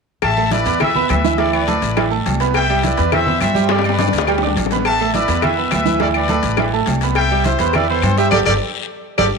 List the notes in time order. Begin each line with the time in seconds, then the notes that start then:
0.22 A1 E5 A5, cowbell, high conga, low agogo, long guiro, claves
0.37 A3 A4 A5, high conga, low agogo
0.51 E4 B4 D5 E5 E6, cowbell, high conga, low timbale, short guiro
0.65 E2 B3 B4 B5, cowbell, high conga, short guiro
0.80 E4 B4 E5 E6, cowbell, high conga, low conga, low agogo, long guiro, claves
0.95 B3 B4 B5, high conga, low conga
1.09 D2 B4 E5, cowbell, high conga, low timbale, low agogo, short guiro, claves
1.24 E3 E4 E5, short guiro
1.38 E3 E4 A4 D5 E5, cowbell, high conga, low agogo, long guiro
1.53 B4 D5, high conga, low agogo, claves
1.67 A3 A4 A5, cowbell, high conga, low timbale, low agogo, short guiro
1.82 A1, cowbell, high conga, short guiro
1.97 E3 E4 E5, cowbell, high conga, low agogo, long guiro, claves
2.11 A3 A4 A5, high conga
2.26 C2, cowbell, high conga, low timbale, low agogo, short guiro
2.40 B3 B4 B5, cowbell, short guiro
2.54 E5 G5, cowbell, high conga, low agogo, long guiro, claves
2.70 G3 G4 G5, high conga, low agogo
2.83 E4 B4 D5 E5 E6, cowbell, high conga, low timbale, short guiro
2.97 E2 B3 B4 B5, cowbell, high conga, short guiro
3.12 E4 C5 E5 E6, cowbell, high conga, low conga, low agogo, long guiro, claves
3.26 B3 B4 B5, high conga, low conga
3.41 G2 C5 E5, cowbell, high conga, low timbale, low agogo, short guiro, claves
3.55 G3 G4 G5, high conga, short guiro
3.69 G3 G4 A4 D5 G5, cowbell, high bongo, high conga, low agogo, long guiro
3.79 high bongo
3.84 B4 D5, high conga, low agogo, claves
3.89 high bongo
3.99 D4 D5 D6, cowbell, high bongo, high conga, low timbale, low agogo, short guiro
4.08 low bongo
4.13 D2, cowbell, high conga, short guiro
4.18 high bongo
4.27 G3 G4 G5, cowbell, high conga, low agogo, long guiro, claves
4.38 low bongo
4.43 D4 D5 D6, high conga
4.47 low bongo
4.55 A1, cowbell, high conga, low timbale, low agogo, short guiro
4.66 low bongo
4.71 B3 B4 B5, cowbell, short guiro
4.76 low bongo
4.85 E5 A5, cowbell, high conga, low agogo, long guiro, claves
5.00 A3 A4 A5, high conga, low agogo
5.14 E4 B4 D5 E5 E6, cowbell, high conga, low timbale, short guiro
5.28 E2 B3 B4 B5, cowbell, high conga, short guiro
5.42 E4 B4 E5 E6, cowbell, high conga, low conga, low agogo, long guiro, claves
5.58 B3 B4 B5, high conga
5.71 D2 B4 E5, cowbell, high conga, low timbale, low agogo, short guiro, claves
5.85 E3 E4 E5, high conga, short guiro
6.00 E3 E4 A4 D5 E5, cowbell, high conga, low agogo, long guiro
6.14 B4 D5, high conga, low agogo, claves
6.28 A3 A4 A5, cowbell, high conga, low timbale, low agogo, short guiro
6.43 A1, cowbell, high conga, short guiro
6.57 E3 E4 E5, cowbell, high conga, low agogo, long guiro, claves
6.73 A3 A4 A5, high conga
6.86 C2, cowbell, high conga, low timbale, low agogo, short guiro
7.01 B3 B4 B5, cowbell, short guiro
7.15 E5 G5, cowbell, high conga, low agogo, long guiro, claves
7.31 G3 G4 G5, high conga, low agogo
7.44 E4 G4 C5 E5 E6, cowbell, high conga, low timbale, short guiro
7.59 E2 B3 B4 B5, cowbell, high conga, short guiro
7.73 E4 B4 D5 E5 E6, cowbell, high conga, low conga, low agogo, long guiro, claves
7.89 B3 A4 B4 C5 B5, high conga
8.02 G2, cowbell, high conga, low timbale, low agogo, short guiro, claves
8.18 G3 G4 C5 E5 G5, short guiro
8.30 G1 G4 A4 D5, cowbell, high conga, high timbale, long guiro, claves
8.45 G1 G4 A4 D5, cowbell, high conga, high timbale, long guiro, claves
9.18 G1 G4 A4 D5, cowbell, high conga, high timbale, long guiro, claves